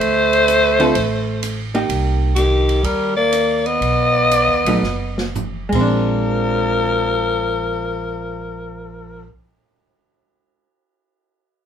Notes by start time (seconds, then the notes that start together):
Already playing: A3 C5
0.00 D2, ride
0.33 ride
0.48 hi-hat pedal, ride
0.80 D3 C4 F4 A4, ride
0.95 A1, ride
1.43 hi-hat pedal, ride
1.75 A#3 D#4 G4, ride
1.89 C2, ride
2.35 D#3 G4, hi-hat pedal, ride
2.69 ride
2.83 D#2 G3 A#4, ride
3.16 A#3 D5
3.33 hi-hat pedal, ride
3.66 B3 D#5, ride
3.81 B1, ride
4.31 hi-hat pedal, ride
4.48 D#2
4.65 A#1 F#3 A3 D#4, ride
4.82 F#1, snare
5.18 snare
5.35 floor tom, hi-hat pedal
5.69 A#1 F3 G#3, kick, crash
5.74 C4 A#4
5.81 D4